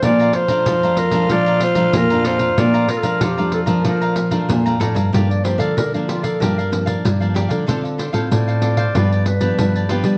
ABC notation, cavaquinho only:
X:1
M:4/4
L:1/16
Q:1/4=94
K:Bb
V:1 name="Cavaquinho"
[Adfb] [dfb] z [dfb] [Adfb] [dfb]2 [dfb] [Adfb] [dfb] z [dfb]2 [dfb] [Adfb] [dfb] | [Adfb] [dfb] z [dfb] [Adfb] [dfb]2 [dfb] [Adfb] [dfb] z [dfb]2 [dfb] [Adfb] [dfb] | [K:Gm] [GBdf] z [GBdf] [Bdf]2 [Bdf] [GBdf] [Bdf] [GBdf] [Bdf] z [Bdf]2 [Bdf] [GBdf] [Bdf] | [DAcf] z [DAcf] [Acf]2 [Acf] [DAcf] [Acf] [FG=Bd] [GBd] z [GBd]2 [GBd] [FGBd] [GBd] |]